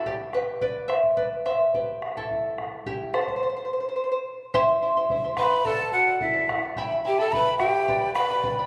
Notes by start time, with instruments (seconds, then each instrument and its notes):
0.06 charango G4 D5, bombo low
0.33 charango G4 B4, bombo rim, bombo low
0.61 charango B4 D5, bombo low
0.88 charango C5 E5, bombo rim
1.03 bombo low
1.17 charango B4 D5, bombo low
1.46 charango C5 E5, bombo rim, bombo low
1.74 charango G4 B4, bombo low
2.02 bombo rim
2.17 charango E4 A4, bombo low
2.31 bombo low
2.58 bombo rim, bombo low
2.86 charango E4 G4, bombo low
3.14 charango A4 C5, bombo rim
3.21 charango C5
3.27 charango C5, bombo low
3.36 charango C5
3.43 charango C5
3.50 charango C5
3.57 charango C5
3.65 charango C5
3.73 charango C5
3.80 charango C5
3.89 charango C5
3.96 charango C5
4.04 charango C5
4.12 charango C5
4.54 charango E4 G4 C5 E5 C6, bombo low
4.69 charango E4 E5 C6
4.82 charango E4 C5 E5 C6
4.97 charango E4 G4 C5 E5 C6
5.10 charango E4 C5 E5 C6, bombo low
5.24 charango E4 G4 C5 E5 C6
5.37 charango E4 C5 E5 C6, pan flute B4, quena B5, bombo rim, bombo low
5.52 charango E4 E5 C6
5.65 pan flute A4, charango A4 D5 F#5, quena A5, bombo low
5.79 charango D5 F#5
5.92 pan flute F#4, charango A4 D5 F#5, quena F#5
6.07 charango A4 D5 F#5
6.20 pan flute E4, charango A4 D5 F#5, quena E5, bombo low
6.34 charango A4 D5 F#5
6.48 charango A4 D5 F#5, bombo rim, bombo low
6.63 charango D5 F#5
6.76 charango E4 G4 E5 G5 B5, bombo low
6.91 charango E4 E5 B5
7.04 charango E4 E5 G5 B5, pan flute G4, quena G5
7.18 charango E4 G4 E5 G5 B5, pan flute A4, quena A5
7.31 charango E4 E5 G5 B5, pan flute B4, quena B5, bombo low
7.46 charango E4 G4 E5 G5 B5
7.58 charango E4 E5 G5 B5, pan flute G4, quena G5, bombo rim, bombo low
7.74 charango E4 E5 B5
7.88 charango G4 B4 D5 G5 B5, bombo low
8.01 charango B4 D5 B5
8.14 pan flute B4, charango B4 D5 G5 B5, quena B5, bombo rim
8.30 charango G4 B4 D5 G5 B5
8.43 charango B4 D5 G5 B5, bombo low
8.59 charango G4 B4 D5 G5 B5